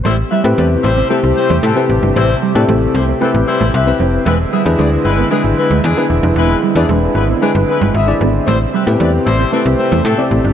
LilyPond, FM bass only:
\new Staff \with { instrumentName = "FM bass" } { \clef bass \time 4/4 \key a \minor \tempo 4 = 114 a,,8 r16 a,16 e,8 a,,8 r16 c,16 r16 e,16 a,16 r16 a,,16 g,,16 | a,,8 r16 a,16 a,,8 c,8 r16 a,,16 r16 a,,16 c,8 f,,8 | e,,8 r16 e,16 d,8 g,,8 r16 gis,,16 r16 d,16 e,16 r16 e,,16 f,,16 | e,,8 r16 e,16 e,,8 gis,,8 r16 g,,16 r16 g,,16 gis,,8 gis,,8 |
a,,8 r16 a,16 e,8 a,,8 r16 c,16 r16 e,16 a,16 r16 a,,16 g,,16 | }